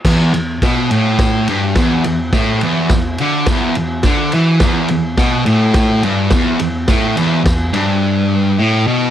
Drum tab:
CC |x-------|--------|--------|--------|
RD |-xxxxxxx|xxxxxxxx|xxxxxxxx|xxxx----|
SD |o-o-o-o-|o-o-o-o-|o-o-o-o-|o-o-----|
BD |o-o-o-o-|o-o-o-o-|o-o-o-o-|o-o-----|